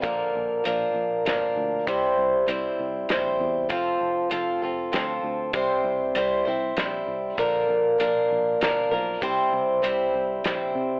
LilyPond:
<<
  \new Staff \with { instrumentName = "Steel-string acoustic guitar" } { \time 3/4 \key c \mixolydian \tempo 4 = 98 <bes, d f bes d' bes'>4 <f bes d' bes'>4 <f bes d' bes'>4 | <c g c' e' c''>4 <g c' e' c''>4 <g c' e' c''>4 | <f c' f' a'>4 <f c' f' a'>8 <c' f' a'>8 <f c' f' a'>4 | <c g c' e' c''>4 <g c' e' c''>8 <c' e' c''>8 <g c' e' c''>4 |
<bes, d f bes d' bes'>4 <f bes d' bes'>4 <f bes d' bes'>8 <f bes d' bes'>8 | <c g c' e' c''>4 <g c' e' c''>4 <g c' e' c''>4 | }
  \new Staff \with { instrumentName = "Fingered electric bass" } { \clef bass \time 3/4 \key c \mixolydian bes,,8 bes,,8 bes,,8 bes,,8 g,,8 d,8 | c,8 c,8 c,8 c,8 bes,,8 e,8 | f,,8 f,,8 f,,8 f,,8 d,8 d,8 | c,8 c,8 c,8 c,8 bes,,8 c,8 |
bes,,8 bes,,8 bes,,8 bes,,8 g,,8 b,,8 | c,8 c,8 c,8 c,8 bes,,8 c8 | }
  \new DrumStaff \with { instrumentName = "Drums" } \drummode { \time 3/4 <hh bd>4 hh4 <hh sn>4 | <hh bd>4 hh4 <hh sn>4 | <hh bd>4 hh4 <hh sn>4 | <hh bd>4 hh4 <hh sn>4 |
<hh bd>4 hh4 <hh sn>4 | <hh bd>4 hh4 <hh sn>4 | }
>>